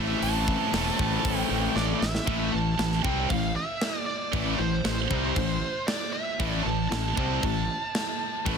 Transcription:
Already playing: fingered electric bass A1, overdriven electric guitar A2 E3 A3 C4, lead electric guitar E5
0.00 overdriven electric guitar E4
0.22 fingered electric bass A1, lead electric guitar A5, open hi-hat
0.48 kick
0.72 fingered electric bass E1, overdriven electric guitar A2 E3 A3 C4 E4, snare, open hi-hat
0.99 fingered electric bass A1, kick
1.25 fingered electric bass A1, kick, open hi-hat
1.38 lead electric guitar G5
1.51 fingered electric bass A1
1.76 fingered electric bass A1, lead electric guitar D5, snare
2.00 fingered electric bass A1, lead electric guitar E5, snare
2.15 snare
2.27 fingered electric bass A1, overdriven electric guitar A2 E3 A3, kick, crash
2.52 fingered electric bass A1, overdriven electric guitar A2 E3, lead electric guitar A5
2.79 fingered electric bass A1, overdriven electric guitar A2 E3, snare, crash
2.92 snare
3.03 fingered electric bass C2, overdriven electric guitar C3 G3 C4, lead electric guitar G5, kick
3.29 fingered electric bass A1, overdriven electric guitar A2 E3, lead electric guitar F5, kick, crash
3.56 lead electric guitar E5
3.81 snare, crash
4.06 lead electric guitar D5
4.33 fingered electric bass A1, overdriven electric guitar A2 E3 A3, kick, crash
4.58 fingered electric bass A1, overdriven electric guitar A2 E3, lead electric guitar C5
4.84 fingered electric bass A1, overdriven electric guitar A2 E3, snare, crash
5.10 fingered electric bass C2, overdriven electric guitar C3 G3 C4, kick
5.36 fingered electric bass A1, overdriven electric guitar A2 E3, kick, crash
5.87 lead electric guitar D5, snare, crash
6.13 lead electric guitar E5
6.39 fingered electric bass A1, overdriven electric guitar A2 E3 A3, kick, crash
6.63 fingered electric bass A1, overdriven electric guitar A2 E3, lead electric guitar A5
6.89 fingered electric bass A1, overdriven electric guitar A2 E3, lead electric guitar A5, snare, crash
7.17 fingered electric bass C2, overdriven electric guitar C3 G3 C4, kick
7.43 fingered electric bass A1, overdriven electric guitar A2 E3, kick, crash
7.95 snare, crash
8.46 fingered electric bass A1, overdriven electric guitar A2 E3 A3, kick, crash

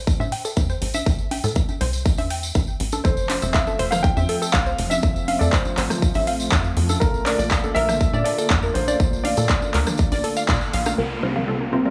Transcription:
Already playing: analog synth bass A1
0.07 kick, tambourine
0.20 analog synth bass A2, synth pluck E5, tambourine, high conga
0.32 synth pluck G5, open hi-hat
0.45 synth pluck A4, tambourine
0.57 analog synth bass E2, kick, tambourine, high conga
0.69 synth pluck C5, tambourine
0.82 analog synth bass A1, open hi-hat
0.94 synth pluck E5, tambourine, high conga
1.06 analog synth bass A1, kick, tambourine
1.19 tambourine
1.31 synth pluck G5, open hi-hat, high conga
1.44 analog synth bass A2, synth pluck A4, tambourine
1.55 kick, tambourine
1.69 tambourine, high conga
1.81 analog synth bass C2, synth pluck C5, open hi-hat
1.93 tambourine
2.06 kick, tambourine
2.17 analog synth bass E2, synth pluck E5, open hi-hat, tambourine, high conga
2.30 synth pluck G5, open hi-hat
2.43 tambourine
2.55 analog synth bass A1, kick, tambourine, high conga
2.67 tambourine
2.80 analog synth bass A1, open hi-hat
2.92 synth pluck A4, tambourine, high conga
3.04 analog synth bass F1, analog synth pad F3 A3 C4 F4, synth pluck A4, grand piano C5, kick, tambourine
3.17 tambourine
3.29 synth pluck C5, clap, open hi-hat, high conga
3.42 analog synth bass F1, synth pluck E5, tambourine
3.53 grand piano E5, synth pluck F5, kick, clap, tambourine
3.67 synth pluck A4, tambourine, high conga
3.79 analog synth bass F1, synth pluck C5, open hi-hat
3.91 grand piano F5, cross-stick, mid tom, tambourine
4.03 grand piano G5, kick, tambourine
4.17 analog synth bass F2, synth pluck E5, tambourine, high conga
4.29 synth pluck A4, open hi-hat
4.42 synth pluck A4, tambourine
4.52 analog synth bass C2, grand piano F5, kick, clap, tambourine, high conga
4.66 synth pluck C5, tambourine
4.78 analog synth bass F1, open hi-hat
4.90 grand piano E5, synth pluck E5, tambourine, high conga
5.03 analog synth bass F1, kick, tambourine
5.16 tambourine
5.28 synth pluck F5, open hi-hat, high conga
5.39 analog synth bass F2, synth pluck A4, grand piano D5, tambourine
5.51 grand piano C5, kick, clap, tambourine
5.65 tambourine, high conga
5.77 analog synth bass A1, synth pluck C5, clap, open hi-hat
5.90 cross-stick, mid tom, tambourine
6.02 kick, tambourine
6.14 analog synth bass A1, synth pluck E5, open hi-hat, tambourine, high conga
6.27 synth pluck F5, open hi-hat
6.40 tambourine
6.52 analog synth bass F2, kick, clap, tambourine, high conga
6.64 tambourine
6.77 analog synth bass F2, open hi-hat
6.89 synth pluck A4, tambourine, high conga
7.00 analog synth bass A#1, analog synth pad D3 A#3, synth pluck A4, grand piano A#4, kick, tambourine
7.14 tambourine
7.25 synth pluck A#4, grand piano D5, clap, open hi-hat, high conga
7.39 analog synth bass A#1, synth pluck D5, tambourine
7.51 synth pluck F5, kick, clap, tambourine
7.64 synth pluck A4, tambourine, high conga
7.75 analog synth bass A#1, synth pluck A#4, grand piano E5, open hi-hat
7.89 cross-stick, mid tom, tambourine
8.00 kick, tambourine
8.13 analog synth bass A#2, synth pluck D5, tambourine, high conga
8.24 synth pluck A4, grand piano D5, open hi-hat
8.38 synth pluck A4, tambourine
8.50 analog synth bass F2, kick, clap, tambourine, high conga
8.62 synth pluck A#4, tambourine
8.74 analog synth bass A#1, grand piano C5, open hi-hat
8.88 synth pluck D5, tambourine, high conga
9.00 analog synth bass A#1, kick, tambourine
9.13 tambourine
9.24 grand piano D5, synth pluck F5, open hi-hat, high conga
9.37 analog synth bass A#2, synth pluck A4, tambourine
9.48 grand piano D5, kick, clap, tambourine
9.62 tambourine, high conga
9.74 analog synth bass D2, synth pluck A#4, clap, open hi-hat
9.87 cross-stick, mid tom, tambourine
9.97 kick, tambourine
10.12 analog synth bass A#1, synth pluck D5, open hi-hat, tambourine, high conga
10.24 synth pluck A4, open hi-hat
10.37 synth pluck F5, tambourine
10.48 analog synth bass A#2, synth pluck D5, kick, clap, tambourine, high conga
10.61 tambourine
10.73 analog synth bass A#1, synth pluck F5, open hi-hat
10.86 synth pluck F5, cross-stick, tambourine, high conga
10.98 analog synth bass C2, synth pluck C3 G3 C4 F4 A#4, analog synth pad C3 G3 A#3 F4, downlifter
11.23 synth pluck C3 G3 C4 F4 A#4 C5, high conga
11.36 synth pluck C3 G3 C4 F4 A#4 F5, mid tom
11.48 synth pluck C3 G3 C4 F4 A4 G5
11.61 synth pluck A#4, high conga
11.73 synth pluck C3 G3 C4 F4 A#4 C5
11.85 synth pluck C3 G3 C4 F4 A#4

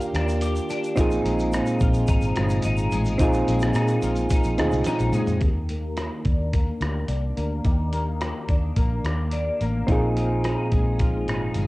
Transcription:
Already playing: clean electric guitar D#3 A#3 D4, synth keys A#3 D4 F4 G4
0.00 clean electric guitar G4, shaker
0.14 fingered electric bass D#2, clean electric guitar D4, cross-stick, closed hi-hat, shaker
0.29 shaker
0.41 clean electric guitar G4, closed hi-hat, shaker
0.56 shaker
0.70 clean electric guitar D4, closed hi-hat, shaker
0.84 shaker
0.96 fingered electric bass A#1, clean electric guitar A#2 D#4, synth keys C4 D#4 F4, kick, closed hi-hat, shaker
1.00 synth keys G#4
1.11 shaker
1.25 fingered electric bass A#1, clean electric guitar G#3, closed hi-hat, shaker
1.39 shaker
1.52 clean electric guitar D#4, cross-stick, closed hi-hat, shaker
1.66 shaker
1.80 fingered electric bass A#1, clean electric guitar F3, kick, closed hi-hat, shaker
1.94 shaker
2.07 fingered electric bass G#1, clean electric guitar D#4, kick, closed hi-hat, shaker
2.21 shaker
2.36 fingered electric bass G1, clean electric guitar G#3, cross-stick, closed hi-hat, shaker
2.49 shaker
2.62 fingered electric bass G#1, clean electric guitar D#4, closed hi-hat, shaker
2.77 shaker
2.91 fingered electric bass A1, clean electric guitar G#3, closed hi-hat, shaker
3.05 shaker
3.18 fingered electric bass A#1, clean electric guitar A#2 D#4, synth keys C4 D#4 F4, kick, closed hi-hat, shaker
3.23 synth keys G#4
3.33 shaker
3.48 fingered electric bass A#1, clean electric guitar G#3, closed hi-hat, shaker
3.60 shaker
3.61 cross-stick, shaker
3.74 fingered electric bass A#2, clean electric guitar D#4, cross-stick, closed hi-hat, shaker
3.88 shaker
4.02 fingered electric bass A#1, clean electric guitar F3, closed hi-hat, shaker
4.16 shaker
4.30 clean electric guitar D#4, kick, closed hi-hat, shaker
4.44 fingered electric bass A#1, shaker
4.58 fingered electric bass D2, clean electric guitar G#3, synth keys C4 D#4 F4 G#4, cross-stick, closed hi-hat, shaker
4.71 fingered electric bass C2, shaker
4.73 shaker
4.84 closed hi-hat, shaker
4.86 clean electric guitar D#4, snare, shaker
4.99 fingered electric bass A#1, shaker
5.13 fingered electric bass A#2, clean electric guitar G#3, closed hi-hat, mid tom, shaker
5.27 floor tom, shaker
5.41 fingered electric bass D#2, clean electric guitar D#3 G4, kick, closed hi-hat
5.69 clean electric guitar A#3, closed hi-hat
5.97 clean electric guitar F4, cross-stick, closed hi-hat
6.12 clean electric guitar G4
6.25 fingered electric bass D#2, clean electric guitar D4, kick, closed hi-hat
6.53 clean electric guitar A#3, kick, closed hi-hat
6.80 fingered electric bass D2, clean electric guitar G4, cross-stick, closed hi-hat
7.08 fingered electric bass C2, clean electric guitar D4, closed hi-hat
7.36 fingered electric bass D2, clean electric guitar A#3, closed hi-hat
7.64 fingered electric bass D#2, clean electric guitar D#3 G4, kick, closed hi-hat
7.93 clean electric guitar A#3, closed hi-hat
8.21 clean electric guitar G4, cross-stick, closed hi-hat
8.48 fingered electric bass D#2, clean electric guitar D4, kick, closed hi-hat
8.76 fingered electric bass A#1, clean electric guitar A#3, kick, closed hi-hat
9.04 fingered electric bass D#2, clean electric guitar G4, cross-stick, closed hi-hat
9.32 clean electric guitar D4, closed hi-hat
9.61 fingered electric bass A1, clean electric guitar A#3, closed hi-hat
9.87 fingered electric bass A#1, clean electric guitar A#2 D#4, synth keys C4 D#4 F4, kick, closed hi-hat
9.92 synth keys G#4
10.17 clean electric guitar F3, closed hi-hat
10.44 clean electric guitar D#4, cross-stick, closed hi-hat
10.72 fingered electric bass A#1, clean electric guitar G#3, kick, closed hi-hat
10.99 clean electric guitar F3, kick, closed hi-hat
11.28 fingered electric bass G#1, clean electric guitar D#4, cross-stick, closed hi-hat
11.54 fingered electric bass G1, clean electric guitar G#3, closed hi-hat

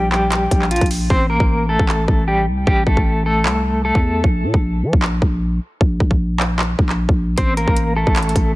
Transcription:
Already playing: 808-style bass A#1, clean electric guitar G3
0.12 clean electric guitar G3 G4, clap
0.32 clap, closed hi-hat
0.51 808-style bass A#1, kick, closed hi-hat
0.62 clap
0.71 clean electric guitar F3 F4, closed hi-hat
0.76 closed hi-hat
0.81 808-style bass A#1, kick, closed hi-hat
0.86 closed hi-hat
0.91 open hi-hat
1.10 808-style bass A1, clean electric guitar C4 C5, kick
1.30 clean electric guitar A#3 A#4
1.40 808-style bass A1, kick
1.69 clean electric guitar A3 A4
1.79 808-style bass A1, kick
1.89 clap
2.08 808-style bass A1, kick
2.28 clean electric guitar G3 G4
2.47 808-style bass C2
2.67 808-style bass A1, clean electric guitar G3 G4, kick
2.87 808-style bass A1, clean electric guitar A3 A4, kick
2.97 808-style bass A1, kick
3.26 clean electric guitar A3 A4
3.45 808-style bass C2, clap
3.85 clean electric guitar A3 A4
3.95 808-style bass E2, kick
4.24 808-style bass A#1, kick
4.44 808-style bass A#2
4.54 808-style bass A#1, kick
4.83 808-style bass F3
4.93 808-style bass A#1, kick
5.02 clap
5.22 808-style bass A#1, kick
5.81 808-style bass A#1, kick
6.00 808-style bass A#1, kick
6.11 kick
6.40 clap
6.59 clap
6.79 808-style bass A#1, kick
6.89 clap
7.09 808-style bass A#1, kick
7.38 808-style bass A1, clean electric guitar C4 C5, kick, closed hi-hat
7.57 clean electric guitar A#3 A#4, closed hi-hat
7.68 808-style bass A1, kick
7.77 closed hi-hat
7.96 clean electric guitar A3 A4
8.07 808-style bass A1, kick
8.16 clap, closed hi-hat
8.23 closed hi-hat
8.29 closed hi-hat
8.36 808-style bass A1, kick, closed hi-hat

